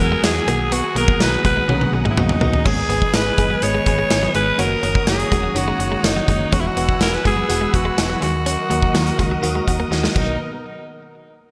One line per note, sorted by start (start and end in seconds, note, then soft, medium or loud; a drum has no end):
0.00 0.17 E2 medium
0.00 0.23 E3 loud
0.00 0.23 F#3 medium
0.00 0.23 G#3 medium
0.00 0.24 B3 medium
0.00 0.24 F#4 loud
0.00 2.62 G#4 medium
0.00 0.26 A#4 loud
0.00 0.44 F#5 medium
0.00 0.46 G#5 medium
0.00 0.46 E6 medium
0.00 closed hi-hat medium
0.12 0.22 G#3 medium
0.23 0.41 E2 loud
0.23 0.39 E3 medium
0.23 0.39 F#3 medium
0.23 0.39 G#3 medium
0.23 0.39 B3 medium
0.23 0.40 F#4 medium
0.23 0.74 G#4 loud
0.23 snare loud
0.23 closed hi-hat loud
0.23 tambourine medium
0.46 0.82 B1 loud
0.46 0.86 D#3 medium
0.46 0.86 F#3 medium
0.46 0.86 A#3 medium
0.46 0.58 A#3 medium
0.46 0.86 B3 medium
0.46 0.86 F#4 medium
0.46 2.63 F#5 medium
0.46 2.63 A#5 medium
0.46 2.63 D#6 medium
0.46 closed hi-hat medium
0.72 0.82 B3 loud
0.72 0.97 F#4 medium
0.72 closed hi-hat loud
0.84 muted clean electric guitar stroke soft
0.95 1.13 B1 loud
0.95 1.11 D#3 medium
0.95 1.12 F#3 medium
0.95 1.12 A#3 medium
0.95 1.06 A#3 medium
0.95 1.12 B3 medium
0.95 1.12 F#4 medium
0.95 1.23 A#4 loud
0.95 closed hi-hat medium
1.08 kick loud
1.19 1.38 B1 loud
1.19 1.35 D#3 medium
1.19 1.36 F#3 medium
1.19 1.36 A#3 medium
1.19 1.36 B3 medium
1.19 1.36 F#4 medium
1.19 1.45 B4 loud
1.19 muted clean electric guitar stroke soft
1.19 snare loud
1.19 closed hi-hat medium
1.19 tambourine medium
1.43 1.62 B1 medium
1.43 1.60 D#3 medium
1.43 1.60 F#3 medium
1.43 1.55 G#3 medium
1.43 1.60 A#3 medium
1.43 1.60 B3 medium
1.43 1.61 F#4 medium
1.43 1.90 B4 loud
1.43 kick medium
1.43 closed hi-hat medium
1.57 1.67 G#3 medium
1.68 1.86 B1 loud
1.68 1.84 D#3 loud
1.68 1.84 F#3 medium
1.68 1.79 F#3 medium
1.68 1.84 A#3 medium
1.68 1.85 B3 medium
1.68 1.85 C#4 loud
1.68 high tom medium
1.81 high tom medium
1.92 2.10 B1 loud
1.92 2.08 D#3 medium
1.92 2.08 F#3 medium
1.92 2.09 A#3 medium
1.92 2.09 B3 medium
1.92 2.09 F#4 medium
1.92 muted clean electric guitar stroke soft
2.05 2.15 G#3 medium
2.05 mid tom medium
2.10 2.20 E4 medium
2.17 2.34 B1 medium
2.17 2.33 D#3 medium
2.17 2.33 F#3 medium
2.17 2.33 A#3 medium
2.17 2.33 B3 medium
2.17 2.68 D#4 medium
2.17 2.33 F#4 loud
2.17 mid tom loud
2.29 mid tom medium
2.41 2.59 B1 loud
2.41 2.57 D#3 medium
2.41 2.57 F#3 medium
2.41 2.51 A#3 medium
2.41 2.58 A#3 medium
2.41 2.58 B3 medium
2.41 2.58 F#4 medium
2.41 floor tom loud
2.53 floor tom loud
2.65 2.83 G#1 loud
2.65 2.81 D#3 loud
2.65 2.82 G#3 medium
2.65 2.82 B3 medium
2.65 2.76 C#4 medium
2.65 3.16 G#4 loud
2.65 2.82 G#4 loud
2.65 4.57 B4 medium
2.65 4.57 D#5 medium
2.65 4.57 G#5 medium
2.65 6.49 D#6 medium
2.65 kick loud
2.65 crash medium
2.89 3.07 G#1 loud
2.89 3.06 D#3 medium
2.89 3.06 G#3 medium
2.89 3.00 B3 medium
2.89 3.06 B3 medium
2.89 3.06 G#4 medium
2.89 closed hi-hat medium
3.02 muted clean electric guitar stroke soft
3.02 kick loud
3.14 3.31 G#1 loud
3.14 3.30 D#3 medium
3.14 3.30 G#3 medium
3.14 3.31 B3 medium
3.14 3.31 G#4 medium
3.14 3.65 B4 loud
3.14 muted clean electric guitar stroke soft
3.14 snare loud
3.14 closed hi-hat medium
3.14 tambourine medium
3.38 3.56 F#1 medium
3.38 3.54 D#3 medium
3.38 3.48 G#3 medium
3.38 3.54 G#3 medium
3.38 3.54 B3 medium
3.38 3.55 G#4 medium
3.38 kick medium
3.38 closed hi-hat medium
3.50 3.60 F#3 medium
3.62 3.80 G#1 loud
3.62 3.78 D#3 loud
3.62 3.78 G#3 medium
3.62 3.78 B3 medium
3.62 3.79 G#4 loud
3.62 4.35 C#5 loud
3.62 closed hi-hat medium
3.75 3.85 G#3 medium
3.86 4.04 G#1 loud
3.86 4.02 D#3 medium
3.86 4.02 G#3 medium
3.86 4.03 B3 medium
3.86 4.03 G#4 medium
3.86 muted clean electric guitar stroke soft
3.86 kick medium
3.86 closed hi-hat medium
3.99 4.09 G#3 medium
4.10 4.28 G#1 loud
4.10 4.26 D#3 medium
4.10 4.26 G#3 medium
4.10 4.27 B3 medium
4.10 4.27 G#4 medium
4.10 muted clean electric guitar stroke soft
4.10 snare loud
4.10 closed hi-hat medium
4.10 tambourine medium
4.23 4.33 F#3 medium
4.34 4.52 G#1 loud
4.34 4.50 D#3 medium
4.34 4.51 G#3 medium
4.34 4.45 G#3 medium
4.34 4.51 B3 medium
4.34 4.51 G#4 medium
4.34 4.61 B4 loud
4.34 closed hi-hat medium
4.57 4.76 F#1 loud
4.57 4.74 D#3 loud
4.57 4.74 A#3 medium
4.57 4.75 C#4 loud
4.57 4.69 C#4 medium
4.57 4.75 F#4 loud
4.57 5.08 A#4 loud
4.57 6.51 C#5 medium
4.57 10.12 F#5 medium
4.57 6.51 A#5 medium
4.57 closed hi-hat medium
4.83 5.01 F#1 medium
4.83 4.99 D#3 medium
4.83 4.99 A#3 medium
4.83 4.93 A#3 medium
4.83 4.99 C#4 medium
4.83 4.99 F#4 medium
4.83 closed hi-hat medium
4.95 muted clean electric guitar stroke soft
4.95 kick loud
5.06 5.25 F#1 loud
5.06 5.23 D#3 medium
5.06 5.23 A#3 medium
5.06 5.23 C#4 medium
5.06 5.23 F#4 medium
5.06 5.59 G#4 medium
5.06 muted clean electric guitar stroke soft
5.06 snare loud
5.06 closed hi-hat medium
5.06 tambourine medium
5.19 closed hi-hat medium
5.31 5.49 E1 loud
5.31 5.47 D#3 medium
5.31 5.42 G#3 medium
5.31 5.47 A#3 medium
5.31 5.47 C#4 medium
5.31 5.48 F#4 medium
5.31 kick medium
5.31 closed hi-hat medium
5.43 5.54 F#3 medium
5.54 5.73 F#1 loud
5.54 5.71 D#3 loud
5.54 5.71 A#3 medium
5.54 5.71 C#4 medium
5.54 5.72 F#4 loud
5.54 6.07 F#4 loud
5.54 closed hi-hat medium
5.68 5.78 G#3 medium
5.79 5.97 F#1 loud
5.79 5.95 D#3 medium
5.79 5.96 A#3 medium
5.79 5.96 C#4 medium
5.79 5.96 F#4 medium
5.79 muted clean electric guitar stroke soft
5.79 closed hi-hat medium
5.92 6.02 G#3 medium
6.03 6.21 F#1 loud
6.03 6.19 D#3 medium
6.03 6.20 A#3 medium
6.03 6.20 C#4 medium
6.03 6.55 D#4 medium
6.03 6.20 F#4 medium
6.03 muted clean electric guitar stroke soft
6.03 snare loud
6.03 closed hi-hat medium
6.03 tambourine medium
6.16 6.26 F#3 medium
6.27 6.46 F#1 loud
6.27 6.44 D#3 medium
6.27 6.38 G#3 medium
6.27 6.44 A#3 medium
6.27 6.44 C#4 medium
6.27 6.44 F#4 medium
6.27 kick medium
6.27 closed hi-hat medium
6.52 6.70 E1 loud
6.52 6.68 E3 loud
6.52 6.68 G#3 medium
6.52 6.68 B3 medium
6.52 6.63 C#4 medium
6.52 6.68 F#4 loud
6.52 6.62 F#4 loud
6.52 8.21 B4 medium
6.52 8.21 G#5 medium
6.52 8.20 E6 medium
6.52 kick loud
6.52 closed hi-hat medium
6.60 6.69 E4 medium
6.67 7.01 F#4 medium
6.76 6.94 E1 medium
6.76 6.92 E3 medium
6.76 6.93 G#3 medium
6.76 6.93 B3 medium
6.76 6.87 B3 medium
6.76 6.93 F#4 medium
6.76 closed hi-hat medium
6.89 muted clean electric guitar stroke soft
6.89 kick loud
7.00 7.18 E1 loud
7.00 7.16 E3 medium
7.00 7.16 G#3 medium
7.00 7.17 B3 medium
7.00 7.17 F#4 medium
7.00 7.16 A#4 medium
7.00 muted clean electric guitar stroke soft
7.00 snare loud
7.00 closed hi-hat medium
7.00 tambourine medium
7.14 7.26 B4 medium
7.24 7.43 F#1 medium
7.24 7.41 E3 medium
7.24 7.41 G#3 medium
7.24 7.35 G#3 medium
7.24 7.41 B3 medium
7.24 7.41 F#4 medium
7.24 7.77 G#4 medium
7.24 kick medium
7.24 closed hi-hat medium
7.37 7.47 F#3 medium
7.48 7.67 E1 loud
7.48 7.65 E3 medium
7.48 7.65 G#3 medium
7.48 7.65 B3 medium
7.48 7.65 F#4 loud
7.48 closed hi-hat medium
7.61 7.71 G#3 medium
7.73 7.91 E1 loud
7.73 7.89 E3 medium
7.73 7.89 G#3 medium
7.73 7.89 B3 medium
7.73 7.90 F#4 medium
7.73 8.23 F#4 loud
7.73 muted clean electric guitar stroke soft
7.73 kick medium
7.73 closed hi-hat medium
7.85 7.95 G#3 medium
7.97 8.16 E1 loud
7.97 8.13 E3 medium
7.97 8.13 G#3 medium
7.97 8.13 B3 medium
7.97 8.14 F#4 medium
7.97 muted clean electric guitar stroke soft
7.97 snare loud
7.97 closed hi-hat medium
7.97 tambourine medium
8.10 8.20 F#3 medium
8.20 8.57 D#2 loud
8.20 8.60 D#3 medium
8.20 8.60 F#3 medium
8.20 8.32 G#3 medium
8.20 8.60 A#3 medium
8.20 8.60 F#4 medium
8.20 9.88 F#4 medium
8.20 10.14 A#4 medium
8.20 10.14 D#5 medium
8.20 10.14 D#6 medium
8.20 closed hi-hat medium
8.46 8.56 C#4 medium
8.46 closed hi-hat loud
8.69 8.88 D#2 loud
8.69 8.86 D#3 medium
8.69 8.86 F#3 medium
8.69 8.86 A#3 medium
8.69 8.80 A#3 medium
8.69 8.86 F#4 medium
8.69 closed hi-hat medium
8.82 muted clean electric guitar stroke soft
8.82 kick medium
8.93 9.12 D#2 loud
8.93 9.10 D#3 medium
8.93 9.10 F#3 medium
8.93 9.10 A#3 medium
8.93 9.10 F#4 medium
8.93 muted clean electric guitar stroke soft
8.93 snare loud
8.93 closed hi-hat medium
8.93 tambourine medium
9.07 closed hi-hat medium
9.18 9.36 C#2 medium
9.18 9.34 D#3 medium
9.18 9.34 F#3 medium
9.18 9.29 G#3 medium
9.18 9.34 A#3 medium
9.18 9.35 F#4 loud
9.18 kick medium
9.18 closed hi-hat medium
9.31 9.41 F#3 medium
9.42 9.61 D#2 loud
9.42 9.58 D#3 loud
9.42 9.58 F#3 loud
9.42 9.59 A#3 loud
9.42 9.59 F#4 loud
9.42 closed hi-hat medium
9.55 9.65 G#3 medium
9.66 9.85 D#2 loud
9.66 9.82 D#3 medium
9.66 9.83 F#3 medium
9.66 9.83 A#3 medium
9.66 9.83 F#4 medium
9.66 muted clean electric guitar stroke soft
9.66 kick medium
9.66 closed hi-hat medium
9.80 9.90 A#3 medium
9.90 10.08 D#2 medium
9.90 10.07 D#3 medium
9.90 10.07 F#3 medium
9.90 10.07 A#3 medium
9.90 10.07 F#4 loud
9.90 muted clean electric guitar stroke soft
9.90 snare medium
10.03 10.14 G#3 medium
10.03 snare medium
10.15 10.38 B1 loud
10.15 10.38 B2 medium
10.15 10.38 D#3 medium
10.15 10.30 F#3 medium
10.15 10.38 A#3 medium
10.15 10.37 B3 medium
10.15 10.38 B3 medium
10.15 10.39 D#4 medium
10.15 10.38 F#4 medium
10.15 10.38 A#4 medium
10.15 10.38 D#5 medium
10.15 kick loud
10.15 crash medium